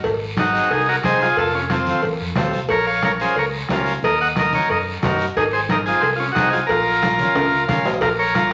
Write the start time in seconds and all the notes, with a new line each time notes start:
0.04 G#1, bombo low, cowbell, high conga, long guiro
0.37 C4 D#4 F#4 G#4, bombo rim, cowbell, high conga, short guiro
0.53 C4 D#4 G#4, short guiro
0.70 C2 D#4 G#4, bombo rim, cowbell, high conga, long guiro
0.89 F#4 A#4
1.03 C2 C4 D#4 G#4 C5, bombo low, bombo rim, cowbell, high conga, short guiro
1.21 F4 G#4, short guiro
1.37 F1 F4 A4, bombo low, cowbell, high conga, long guiro
1.54 C#4 F4
1.70 C4 F4 A4, bombo rim, cowbell, high conga, short guiro
1.87 C4 F4 A4, low conga, short guiro
2.02 A1, cowbell, high conga, long guiro
2.20 F2
2.36 D#2 C4 F4 A4, bombo low, bombo rim, cowbell, high conga, low conga, low timbale, short guiro
2.53 C2, short guiro
2.69 A#1 A#4 C#5, bombo low, cowbell, high conga, long guiro
2.87 C#5 F5
3.02 C#4 F4 A#4 C#5, bombo rim, cowbell, high conga, short guiro
3.20 C#4 F4 G#4 A#4 C5, short guiro
3.35 C#2 A#4 C#5, cowbell, high conga, long guiro
3.69 C#2 C#4 F4 A#4, bombo low, bombo rim, cowbell, high conga, low timbale, short guiro
3.86 short guiro
4.03 D#2 A#4 D#5, bombo low, cowbell, high conga, long guiro
4.21 D#5 F#5
4.36 D#4 F#4 A#4 D#5, bombo rim, cowbell, high conga, short guiro
4.53 D#4 F#4 A#4 C#5, low conga, short guiro
4.69 F#2 A#4 D#5, cowbell, high conga, long guiro
5.02 F#2 D#4 F#4 A#4, bombo low, bombo rim, cowbell, high conga, low conga, low timbale, short guiro
5.19 short guiro
5.36 G#1 D#4 G#4, bombo low, cowbell, high conga, long guiro
5.53 G#4 C5
5.69 C4 D#4 G#4 A#4, bombo rim, cowbell, high conga, short guiro
5.86 C4 D#4 F4 G#4, short guiro
6.01 C2 G#4 C5, bombo rim, cowbell, high conga, long guiro
6.16 C#4 F4
6.32 C2 D#4 F#4, bombo low, bombo rim, short guiro
6.36 C4 D#4 G#4, cowbell, high conga
6.50 F4 G#4, short guiro
6.67 A#1 F4 A#4, bombo low, cowbell, high conga, long guiro
7.02 C#4 F4 A#4, bombo rim, cowbell, high conga, short guiro
7.19 C#4 F4 A#4, low conga, short guiro
7.35 C#2, bombo rim, cowbell, high conga, high timbale, long guiro
7.52 C#2
7.67 C2 C#4 F4 A#4 F5, bombo low, bombo rim, cowbell, high conga, low conga, short guiro
7.85 A#1, low timbale, short guiro
7.91 D#5
8.01 A#1 F4 A#4, bombo low, bombo rim, cowbell, high conga, long guiro
8.19 A#4 C#5
8.34 C#4 F4 A#4, bombo rim, cowbell, high conga, short guiro